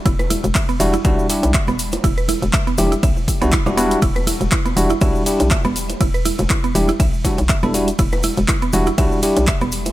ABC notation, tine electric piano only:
X:1
M:4/4
L:1/16
Q:"Swing 16ths" 1/4=121
K:Em
V:1 name="Tine electric piano"
z6 [G,DEF] z [G,DEF]2 [G,DEG]2 z4 | z6 [G,DEG] z4 [G,DEF] z [G,DEF] [G,DEF]2 | z6 [G,DEF] z [G,DEF]2 [G,DEG]2 z4 | z6 [G,DEG] z3 [G,DEF] z2 [G,DEA] [G,DEF] z |
z6 [G,DEF] z [G,DEF]2 [G,DEG]2 z4 |]